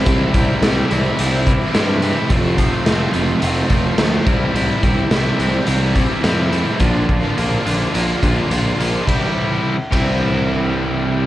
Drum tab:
RD |--------|--------|--------|--------|
HH |xxxxxxxx|xxxxxxxx|xxxxxxxx|xxxxxxxx|
SD |--o---o-|--o---o-|--o---o-|--------|
BD |oo---o--|oo---o-o|-o---o--|oo---o--|

RD |x--x----|
HH |--------|
SD |--------|
BD |o--o----|